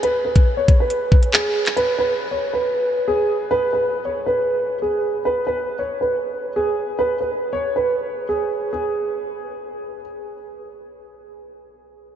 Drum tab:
HH |x--x--x-x--x---x|x---------------|----------------|----------------|
CP |------------x--x|----------------|----------------|----------------|
BD |---o--o---o-----|----------------|----------------|----------------|

HH |----------------|----------------|----------------|
CP |----------------|----------------|----------------|
BD |----------------|----------------|----------------|